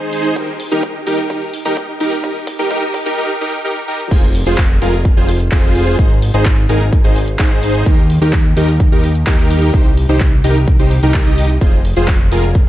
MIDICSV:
0, 0, Header, 1, 4, 480
1, 0, Start_track
1, 0, Tempo, 468750
1, 372, Time_signature, 4, 2, 24, 8
1, 12990, End_track
2, 0, Start_track
2, 0, Title_t, "Supersaw synth"
2, 0, Program_c, 0, 81
2, 0, Note_on_c, 0, 63, 98
2, 0, Note_on_c, 0, 68, 86
2, 0, Note_on_c, 0, 72, 104
2, 343, Note_off_c, 0, 63, 0
2, 343, Note_off_c, 0, 68, 0
2, 343, Note_off_c, 0, 72, 0
2, 373, Note_on_c, 0, 63, 84
2, 373, Note_on_c, 0, 67, 76
2, 373, Note_on_c, 0, 70, 94
2, 500, Note_off_c, 0, 63, 0
2, 500, Note_off_c, 0, 67, 0
2, 500, Note_off_c, 0, 70, 0
2, 732, Note_on_c, 0, 67, 71
2, 732, Note_on_c, 0, 70, 84
2, 733, Note_on_c, 0, 63, 75
2, 859, Note_off_c, 0, 67, 0
2, 859, Note_off_c, 0, 70, 0
2, 860, Note_off_c, 0, 63, 0
2, 1092, Note_on_c, 0, 63, 86
2, 1092, Note_on_c, 0, 67, 77
2, 1093, Note_on_c, 0, 70, 93
2, 1219, Note_off_c, 0, 63, 0
2, 1220, Note_off_c, 0, 67, 0
2, 1220, Note_off_c, 0, 70, 0
2, 1332, Note_on_c, 0, 63, 86
2, 1332, Note_on_c, 0, 67, 80
2, 1332, Note_on_c, 0, 70, 95
2, 1459, Note_off_c, 0, 63, 0
2, 1459, Note_off_c, 0, 67, 0
2, 1459, Note_off_c, 0, 70, 0
2, 1692, Note_on_c, 0, 63, 80
2, 1692, Note_on_c, 0, 67, 75
2, 1692, Note_on_c, 0, 70, 90
2, 1819, Note_off_c, 0, 63, 0
2, 1819, Note_off_c, 0, 67, 0
2, 1819, Note_off_c, 0, 70, 0
2, 2052, Note_on_c, 0, 63, 91
2, 2052, Note_on_c, 0, 67, 80
2, 2052, Note_on_c, 0, 70, 96
2, 2179, Note_off_c, 0, 63, 0
2, 2179, Note_off_c, 0, 67, 0
2, 2179, Note_off_c, 0, 70, 0
2, 2292, Note_on_c, 0, 63, 91
2, 2292, Note_on_c, 0, 67, 83
2, 2292, Note_on_c, 0, 70, 101
2, 2419, Note_off_c, 0, 63, 0
2, 2419, Note_off_c, 0, 67, 0
2, 2419, Note_off_c, 0, 70, 0
2, 2652, Note_on_c, 0, 63, 84
2, 2652, Note_on_c, 0, 67, 75
2, 2652, Note_on_c, 0, 70, 92
2, 2753, Note_off_c, 0, 63, 0
2, 2753, Note_off_c, 0, 67, 0
2, 2753, Note_off_c, 0, 70, 0
2, 2772, Note_on_c, 0, 63, 90
2, 2772, Note_on_c, 0, 67, 84
2, 2772, Note_on_c, 0, 70, 101
2, 2899, Note_off_c, 0, 63, 0
2, 2899, Note_off_c, 0, 67, 0
2, 2899, Note_off_c, 0, 70, 0
2, 3131, Note_on_c, 0, 63, 84
2, 3132, Note_on_c, 0, 67, 79
2, 3132, Note_on_c, 0, 70, 92
2, 3233, Note_off_c, 0, 63, 0
2, 3233, Note_off_c, 0, 67, 0
2, 3233, Note_off_c, 0, 70, 0
2, 3252, Note_on_c, 0, 63, 94
2, 3252, Note_on_c, 0, 67, 87
2, 3252, Note_on_c, 0, 70, 102
2, 3379, Note_off_c, 0, 63, 0
2, 3379, Note_off_c, 0, 67, 0
2, 3379, Note_off_c, 0, 70, 0
2, 3492, Note_on_c, 0, 63, 93
2, 3492, Note_on_c, 0, 67, 88
2, 3492, Note_on_c, 0, 70, 104
2, 3619, Note_off_c, 0, 63, 0
2, 3619, Note_off_c, 0, 67, 0
2, 3619, Note_off_c, 0, 70, 0
2, 3732, Note_on_c, 0, 63, 95
2, 3732, Note_on_c, 0, 67, 89
2, 3732, Note_on_c, 0, 70, 104
2, 3859, Note_off_c, 0, 63, 0
2, 3859, Note_off_c, 0, 67, 0
2, 3859, Note_off_c, 0, 70, 0
2, 3971, Note_on_c, 0, 70, 105
2, 3972, Note_on_c, 0, 63, 92
2, 3972, Note_on_c, 0, 67, 86
2, 4099, Note_off_c, 0, 63, 0
2, 4099, Note_off_c, 0, 67, 0
2, 4099, Note_off_c, 0, 70, 0
2, 4212, Note_on_c, 0, 65, 94
2, 4212, Note_on_c, 0, 68, 84
2, 4212, Note_on_c, 0, 72, 101
2, 4339, Note_off_c, 0, 65, 0
2, 4339, Note_off_c, 0, 68, 0
2, 4339, Note_off_c, 0, 72, 0
2, 4571, Note_on_c, 0, 72, 93
2, 4572, Note_on_c, 0, 65, 85
2, 4572, Note_on_c, 0, 68, 74
2, 4699, Note_off_c, 0, 65, 0
2, 4699, Note_off_c, 0, 68, 0
2, 4699, Note_off_c, 0, 72, 0
2, 4933, Note_on_c, 0, 65, 94
2, 4933, Note_on_c, 0, 68, 84
2, 4933, Note_on_c, 0, 70, 101
2, 5060, Note_off_c, 0, 65, 0
2, 5060, Note_off_c, 0, 68, 0
2, 5060, Note_off_c, 0, 70, 0
2, 5294, Note_on_c, 0, 65, 80
2, 5294, Note_on_c, 0, 68, 73
2, 5294, Note_on_c, 0, 72, 85
2, 5420, Note_off_c, 0, 65, 0
2, 5420, Note_off_c, 0, 68, 0
2, 5420, Note_off_c, 0, 72, 0
2, 5653, Note_on_c, 0, 65, 99
2, 5653, Note_on_c, 0, 68, 87
2, 5653, Note_on_c, 0, 72, 104
2, 6104, Note_off_c, 0, 65, 0
2, 6104, Note_off_c, 0, 68, 0
2, 6104, Note_off_c, 0, 72, 0
2, 6133, Note_on_c, 0, 63, 94
2, 6133, Note_on_c, 0, 68, 82
2, 6133, Note_on_c, 0, 72, 101
2, 6260, Note_off_c, 0, 63, 0
2, 6260, Note_off_c, 0, 68, 0
2, 6260, Note_off_c, 0, 72, 0
2, 6493, Note_on_c, 0, 63, 84
2, 6493, Note_on_c, 0, 68, 79
2, 6493, Note_on_c, 0, 72, 93
2, 6620, Note_off_c, 0, 63, 0
2, 6620, Note_off_c, 0, 68, 0
2, 6620, Note_off_c, 0, 72, 0
2, 6853, Note_on_c, 0, 63, 90
2, 6853, Note_on_c, 0, 68, 84
2, 6853, Note_on_c, 0, 70, 99
2, 6980, Note_off_c, 0, 63, 0
2, 6980, Note_off_c, 0, 68, 0
2, 6980, Note_off_c, 0, 70, 0
2, 7212, Note_on_c, 0, 63, 80
2, 7212, Note_on_c, 0, 68, 72
2, 7212, Note_on_c, 0, 72, 87
2, 7340, Note_off_c, 0, 63, 0
2, 7340, Note_off_c, 0, 68, 0
2, 7340, Note_off_c, 0, 72, 0
2, 7573, Note_on_c, 0, 63, 99
2, 7573, Note_on_c, 0, 68, 88
2, 7573, Note_on_c, 0, 72, 106
2, 8024, Note_off_c, 0, 63, 0
2, 8024, Note_off_c, 0, 68, 0
2, 8024, Note_off_c, 0, 72, 0
2, 8053, Note_on_c, 0, 63, 94
2, 8053, Note_on_c, 0, 67, 85
2, 8053, Note_on_c, 0, 70, 102
2, 8180, Note_off_c, 0, 63, 0
2, 8180, Note_off_c, 0, 67, 0
2, 8180, Note_off_c, 0, 70, 0
2, 8413, Note_on_c, 0, 67, 76
2, 8413, Note_on_c, 0, 70, 90
2, 8414, Note_on_c, 0, 63, 84
2, 8540, Note_off_c, 0, 63, 0
2, 8540, Note_off_c, 0, 67, 0
2, 8540, Note_off_c, 0, 70, 0
2, 8774, Note_on_c, 0, 67, 84
2, 8774, Note_on_c, 0, 70, 101
2, 8775, Note_on_c, 0, 63, 95
2, 8901, Note_off_c, 0, 63, 0
2, 8901, Note_off_c, 0, 67, 0
2, 8901, Note_off_c, 0, 70, 0
2, 9134, Note_on_c, 0, 63, 78
2, 9134, Note_on_c, 0, 67, 72
2, 9134, Note_on_c, 0, 70, 87
2, 9260, Note_off_c, 0, 63, 0
2, 9260, Note_off_c, 0, 67, 0
2, 9260, Note_off_c, 0, 70, 0
2, 9493, Note_on_c, 0, 63, 93
2, 9493, Note_on_c, 0, 67, 89
2, 9493, Note_on_c, 0, 70, 104
2, 9944, Note_off_c, 0, 63, 0
2, 9944, Note_off_c, 0, 67, 0
2, 9944, Note_off_c, 0, 70, 0
2, 9973, Note_on_c, 0, 63, 95
2, 9973, Note_on_c, 0, 72, 106
2, 10100, Note_off_c, 0, 63, 0
2, 10100, Note_off_c, 0, 72, 0
2, 10333, Note_on_c, 0, 63, 83
2, 10333, Note_on_c, 0, 67, 78
2, 10334, Note_on_c, 0, 72, 94
2, 10460, Note_off_c, 0, 63, 0
2, 10460, Note_off_c, 0, 67, 0
2, 10460, Note_off_c, 0, 72, 0
2, 10692, Note_on_c, 0, 63, 93
2, 10692, Note_on_c, 0, 67, 86
2, 10692, Note_on_c, 0, 70, 104
2, 10819, Note_off_c, 0, 63, 0
2, 10819, Note_off_c, 0, 67, 0
2, 10819, Note_off_c, 0, 70, 0
2, 11053, Note_on_c, 0, 63, 80
2, 11053, Note_on_c, 0, 67, 70
2, 11053, Note_on_c, 0, 72, 88
2, 11180, Note_off_c, 0, 63, 0
2, 11180, Note_off_c, 0, 67, 0
2, 11180, Note_off_c, 0, 72, 0
2, 11294, Note_on_c, 0, 63, 77
2, 11294, Note_on_c, 0, 67, 69
2, 11294, Note_on_c, 0, 70, 85
2, 11497, Note_off_c, 0, 63, 0
2, 11497, Note_off_c, 0, 67, 0
2, 11497, Note_off_c, 0, 70, 0
2, 11533, Note_on_c, 0, 67, 76
2, 11533, Note_on_c, 0, 75, 94
2, 11534, Note_on_c, 0, 63, 82
2, 11736, Note_off_c, 0, 63, 0
2, 11736, Note_off_c, 0, 67, 0
2, 11736, Note_off_c, 0, 75, 0
2, 11893, Note_on_c, 0, 65, 94
2, 11893, Note_on_c, 0, 68, 89
2, 11893, Note_on_c, 0, 72, 101
2, 12020, Note_off_c, 0, 65, 0
2, 12020, Note_off_c, 0, 68, 0
2, 12020, Note_off_c, 0, 72, 0
2, 12253, Note_on_c, 0, 68, 80
2, 12253, Note_on_c, 0, 72, 94
2, 12254, Note_on_c, 0, 65, 84
2, 12380, Note_off_c, 0, 65, 0
2, 12380, Note_off_c, 0, 68, 0
2, 12380, Note_off_c, 0, 72, 0
2, 12614, Note_on_c, 0, 65, 92
2, 12614, Note_on_c, 0, 68, 84
2, 12614, Note_on_c, 0, 70, 104
2, 12740, Note_off_c, 0, 65, 0
2, 12740, Note_off_c, 0, 68, 0
2, 12740, Note_off_c, 0, 70, 0
2, 12990, End_track
3, 0, Start_track
3, 0, Title_t, "Analog synth bass"
3, 0, Program_c, 1, 38
3, 4212, Note_on_c, 1, 29, 96
3, 4548, Note_off_c, 1, 29, 0
3, 4572, Note_on_c, 1, 29, 99
3, 4908, Note_off_c, 1, 29, 0
3, 4932, Note_on_c, 1, 29, 97
3, 5268, Note_off_c, 1, 29, 0
3, 5292, Note_on_c, 1, 29, 98
3, 5628, Note_off_c, 1, 29, 0
3, 5652, Note_on_c, 1, 29, 96
3, 6108, Note_off_c, 1, 29, 0
3, 6131, Note_on_c, 1, 32, 95
3, 6468, Note_off_c, 1, 32, 0
3, 6494, Note_on_c, 1, 32, 103
3, 6829, Note_off_c, 1, 32, 0
3, 6853, Note_on_c, 1, 32, 97
3, 7189, Note_off_c, 1, 32, 0
3, 7214, Note_on_c, 1, 32, 100
3, 7549, Note_off_c, 1, 32, 0
3, 7572, Note_on_c, 1, 32, 95
3, 8028, Note_off_c, 1, 32, 0
3, 8052, Note_on_c, 1, 39, 93
3, 8388, Note_off_c, 1, 39, 0
3, 8413, Note_on_c, 1, 39, 99
3, 8749, Note_off_c, 1, 39, 0
3, 8773, Note_on_c, 1, 39, 99
3, 9109, Note_off_c, 1, 39, 0
3, 9132, Note_on_c, 1, 39, 96
3, 9468, Note_off_c, 1, 39, 0
3, 9492, Note_on_c, 1, 39, 97
3, 9948, Note_off_c, 1, 39, 0
3, 9972, Note_on_c, 1, 36, 95
3, 10308, Note_off_c, 1, 36, 0
3, 10332, Note_on_c, 1, 36, 101
3, 10668, Note_off_c, 1, 36, 0
3, 10692, Note_on_c, 1, 36, 98
3, 11028, Note_off_c, 1, 36, 0
3, 11052, Note_on_c, 1, 36, 94
3, 11268, Note_off_c, 1, 36, 0
3, 11293, Note_on_c, 1, 36, 99
3, 11509, Note_off_c, 1, 36, 0
3, 11533, Note_on_c, 1, 36, 99
3, 11869, Note_off_c, 1, 36, 0
3, 11892, Note_on_c, 1, 29, 97
3, 12228, Note_off_c, 1, 29, 0
3, 12253, Note_on_c, 1, 29, 101
3, 12589, Note_off_c, 1, 29, 0
3, 12612, Note_on_c, 1, 29, 99
3, 12948, Note_off_c, 1, 29, 0
3, 12990, End_track
4, 0, Start_track
4, 0, Title_t, "Drums"
4, 131, Note_on_c, 9, 46, 109
4, 233, Note_off_c, 9, 46, 0
4, 251, Note_on_c, 9, 42, 52
4, 354, Note_off_c, 9, 42, 0
4, 371, Note_on_c, 9, 42, 79
4, 372, Note_on_c, 9, 36, 102
4, 474, Note_off_c, 9, 36, 0
4, 474, Note_off_c, 9, 42, 0
4, 611, Note_on_c, 9, 46, 111
4, 714, Note_off_c, 9, 46, 0
4, 733, Note_on_c, 9, 42, 50
4, 835, Note_off_c, 9, 42, 0
4, 852, Note_on_c, 9, 36, 103
4, 852, Note_on_c, 9, 42, 72
4, 954, Note_off_c, 9, 36, 0
4, 954, Note_off_c, 9, 42, 0
4, 1092, Note_on_c, 9, 46, 107
4, 1194, Note_off_c, 9, 46, 0
4, 1212, Note_on_c, 9, 42, 52
4, 1314, Note_off_c, 9, 42, 0
4, 1332, Note_on_c, 9, 36, 102
4, 1332, Note_on_c, 9, 42, 75
4, 1434, Note_off_c, 9, 36, 0
4, 1435, Note_off_c, 9, 42, 0
4, 1573, Note_on_c, 9, 46, 113
4, 1675, Note_off_c, 9, 46, 0
4, 1692, Note_on_c, 9, 42, 49
4, 1794, Note_off_c, 9, 42, 0
4, 1812, Note_on_c, 9, 36, 99
4, 1812, Note_on_c, 9, 42, 75
4, 1914, Note_off_c, 9, 36, 0
4, 1915, Note_off_c, 9, 42, 0
4, 2052, Note_on_c, 9, 46, 110
4, 2154, Note_off_c, 9, 46, 0
4, 2173, Note_on_c, 9, 42, 50
4, 2276, Note_off_c, 9, 42, 0
4, 2292, Note_on_c, 9, 36, 107
4, 2292, Note_on_c, 9, 42, 77
4, 2394, Note_off_c, 9, 36, 0
4, 2394, Note_off_c, 9, 42, 0
4, 2532, Note_on_c, 9, 36, 104
4, 2532, Note_on_c, 9, 46, 109
4, 2634, Note_off_c, 9, 36, 0
4, 2634, Note_off_c, 9, 46, 0
4, 2652, Note_on_c, 9, 42, 52
4, 2754, Note_off_c, 9, 42, 0
4, 2771, Note_on_c, 9, 42, 74
4, 2772, Note_on_c, 9, 36, 107
4, 2873, Note_off_c, 9, 42, 0
4, 2874, Note_off_c, 9, 36, 0
4, 3012, Note_on_c, 9, 36, 105
4, 3012, Note_on_c, 9, 46, 111
4, 3114, Note_off_c, 9, 36, 0
4, 3114, Note_off_c, 9, 46, 0
4, 3132, Note_on_c, 9, 42, 50
4, 3234, Note_off_c, 9, 42, 0
4, 4212, Note_on_c, 9, 36, 121
4, 4213, Note_on_c, 9, 42, 88
4, 4213, Note_on_c, 9, 49, 106
4, 4314, Note_off_c, 9, 36, 0
4, 4315, Note_off_c, 9, 42, 0
4, 4315, Note_off_c, 9, 49, 0
4, 4453, Note_on_c, 9, 46, 108
4, 4555, Note_off_c, 9, 46, 0
4, 4573, Note_on_c, 9, 42, 56
4, 4675, Note_off_c, 9, 42, 0
4, 4690, Note_on_c, 9, 39, 124
4, 4692, Note_on_c, 9, 36, 118
4, 4693, Note_on_c, 9, 42, 81
4, 4792, Note_off_c, 9, 39, 0
4, 4794, Note_off_c, 9, 36, 0
4, 4795, Note_off_c, 9, 42, 0
4, 4933, Note_on_c, 9, 46, 100
4, 5036, Note_off_c, 9, 46, 0
4, 5054, Note_on_c, 9, 42, 56
4, 5156, Note_off_c, 9, 42, 0
4, 5172, Note_on_c, 9, 36, 118
4, 5173, Note_on_c, 9, 42, 85
4, 5274, Note_off_c, 9, 36, 0
4, 5275, Note_off_c, 9, 42, 0
4, 5413, Note_on_c, 9, 46, 106
4, 5515, Note_off_c, 9, 46, 0
4, 5532, Note_on_c, 9, 42, 52
4, 5635, Note_off_c, 9, 42, 0
4, 5650, Note_on_c, 9, 39, 122
4, 5652, Note_on_c, 9, 36, 118
4, 5653, Note_on_c, 9, 42, 85
4, 5752, Note_off_c, 9, 39, 0
4, 5754, Note_off_c, 9, 36, 0
4, 5755, Note_off_c, 9, 42, 0
4, 5893, Note_on_c, 9, 46, 104
4, 5995, Note_off_c, 9, 46, 0
4, 6013, Note_on_c, 9, 42, 54
4, 6116, Note_off_c, 9, 42, 0
4, 6132, Note_on_c, 9, 36, 124
4, 6133, Note_on_c, 9, 42, 82
4, 6234, Note_off_c, 9, 36, 0
4, 6236, Note_off_c, 9, 42, 0
4, 6373, Note_on_c, 9, 46, 114
4, 6475, Note_off_c, 9, 46, 0
4, 6493, Note_on_c, 9, 42, 55
4, 6595, Note_off_c, 9, 42, 0
4, 6610, Note_on_c, 9, 39, 118
4, 6612, Note_on_c, 9, 36, 124
4, 6613, Note_on_c, 9, 42, 78
4, 6712, Note_off_c, 9, 39, 0
4, 6715, Note_off_c, 9, 36, 0
4, 6715, Note_off_c, 9, 42, 0
4, 6853, Note_on_c, 9, 46, 103
4, 6955, Note_off_c, 9, 46, 0
4, 6973, Note_on_c, 9, 42, 55
4, 7075, Note_off_c, 9, 42, 0
4, 7092, Note_on_c, 9, 36, 123
4, 7093, Note_on_c, 9, 42, 84
4, 7195, Note_off_c, 9, 36, 0
4, 7195, Note_off_c, 9, 42, 0
4, 7212, Note_on_c, 9, 46, 64
4, 7315, Note_off_c, 9, 46, 0
4, 7332, Note_on_c, 9, 46, 108
4, 7435, Note_off_c, 9, 46, 0
4, 7452, Note_on_c, 9, 42, 52
4, 7555, Note_off_c, 9, 42, 0
4, 7570, Note_on_c, 9, 39, 124
4, 7572, Note_on_c, 9, 36, 119
4, 7572, Note_on_c, 9, 42, 80
4, 7672, Note_off_c, 9, 39, 0
4, 7674, Note_off_c, 9, 36, 0
4, 7675, Note_off_c, 9, 42, 0
4, 7813, Note_on_c, 9, 46, 111
4, 7915, Note_off_c, 9, 46, 0
4, 7933, Note_on_c, 9, 42, 53
4, 8036, Note_off_c, 9, 42, 0
4, 8052, Note_on_c, 9, 36, 125
4, 8053, Note_on_c, 9, 42, 79
4, 8154, Note_off_c, 9, 36, 0
4, 8155, Note_off_c, 9, 42, 0
4, 8293, Note_on_c, 9, 46, 115
4, 8395, Note_off_c, 9, 46, 0
4, 8414, Note_on_c, 9, 42, 54
4, 8517, Note_off_c, 9, 42, 0
4, 8530, Note_on_c, 9, 39, 120
4, 8532, Note_on_c, 9, 36, 127
4, 8534, Note_on_c, 9, 42, 77
4, 8633, Note_off_c, 9, 39, 0
4, 8635, Note_off_c, 9, 36, 0
4, 8636, Note_off_c, 9, 42, 0
4, 8773, Note_on_c, 9, 46, 109
4, 8876, Note_off_c, 9, 46, 0
4, 8894, Note_on_c, 9, 42, 53
4, 8996, Note_off_c, 9, 42, 0
4, 9012, Note_on_c, 9, 36, 126
4, 9014, Note_on_c, 9, 42, 80
4, 9115, Note_off_c, 9, 36, 0
4, 9116, Note_off_c, 9, 42, 0
4, 9253, Note_on_c, 9, 46, 111
4, 9356, Note_off_c, 9, 46, 0
4, 9374, Note_on_c, 9, 42, 50
4, 9476, Note_off_c, 9, 42, 0
4, 9491, Note_on_c, 9, 39, 122
4, 9492, Note_on_c, 9, 36, 127
4, 9494, Note_on_c, 9, 42, 78
4, 9593, Note_off_c, 9, 39, 0
4, 9595, Note_off_c, 9, 36, 0
4, 9596, Note_off_c, 9, 42, 0
4, 9733, Note_on_c, 9, 46, 114
4, 9835, Note_off_c, 9, 46, 0
4, 9854, Note_on_c, 9, 42, 52
4, 9956, Note_off_c, 9, 42, 0
4, 9972, Note_on_c, 9, 36, 127
4, 9973, Note_on_c, 9, 42, 79
4, 10075, Note_off_c, 9, 36, 0
4, 10075, Note_off_c, 9, 42, 0
4, 10213, Note_on_c, 9, 46, 113
4, 10315, Note_off_c, 9, 46, 0
4, 10333, Note_on_c, 9, 42, 50
4, 10435, Note_off_c, 9, 42, 0
4, 10450, Note_on_c, 9, 39, 116
4, 10452, Note_on_c, 9, 36, 125
4, 10453, Note_on_c, 9, 42, 77
4, 10552, Note_off_c, 9, 39, 0
4, 10555, Note_off_c, 9, 36, 0
4, 10555, Note_off_c, 9, 42, 0
4, 10692, Note_on_c, 9, 46, 106
4, 10795, Note_off_c, 9, 46, 0
4, 10813, Note_on_c, 9, 42, 50
4, 10915, Note_off_c, 9, 42, 0
4, 10932, Note_on_c, 9, 36, 121
4, 10933, Note_on_c, 9, 42, 80
4, 11035, Note_off_c, 9, 36, 0
4, 11036, Note_off_c, 9, 42, 0
4, 11053, Note_on_c, 9, 46, 61
4, 11156, Note_off_c, 9, 46, 0
4, 11173, Note_on_c, 9, 46, 112
4, 11275, Note_off_c, 9, 46, 0
4, 11293, Note_on_c, 9, 42, 49
4, 11396, Note_off_c, 9, 42, 0
4, 11410, Note_on_c, 9, 39, 122
4, 11412, Note_on_c, 9, 36, 122
4, 11413, Note_on_c, 9, 42, 77
4, 11513, Note_off_c, 9, 39, 0
4, 11515, Note_off_c, 9, 36, 0
4, 11516, Note_off_c, 9, 42, 0
4, 11534, Note_on_c, 9, 42, 35
4, 11636, Note_off_c, 9, 42, 0
4, 11653, Note_on_c, 9, 46, 111
4, 11755, Note_off_c, 9, 46, 0
4, 11773, Note_on_c, 9, 42, 50
4, 11875, Note_off_c, 9, 42, 0
4, 11892, Note_on_c, 9, 36, 119
4, 11893, Note_on_c, 9, 42, 76
4, 11995, Note_off_c, 9, 36, 0
4, 11995, Note_off_c, 9, 42, 0
4, 12133, Note_on_c, 9, 46, 110
4, 12235, Note_off_c, 9, 46, 0
4, 12253, Note_on_c, 9, 42, 52
4, 12355, Note_off_c, 9, 42, 0
4, 12369, Note_on_c, 9, 39, 112
4, 12372, Note_on_c, 9, 36, 122
4, 12372, Note_on_c, 9, 42, 76
4, 12472, Note_off_c, 9, 39, 0
4, 12475, Note_off_c, 9, 36, 0
4, 12475, Note_off_c, 9, 42, 0
4, 12612, Note_on_c, 9, 46, 102
4, 12715, Note_off_c, 9, 46, 0
4, 12733, Note_on_c, 9, 42, 51
4, 12835, Note_off_c, 9, 42, 0
4, 12852, Note_on_c, 9, 36, 117
4, 12852, Note_on_c, 9, 42, 78
4, 12955, Note_off_c, 9, 36, 0
4, 12955, Note_off_c, 9, 42, 0
4, 12990, End_track
0, 0, End_of_file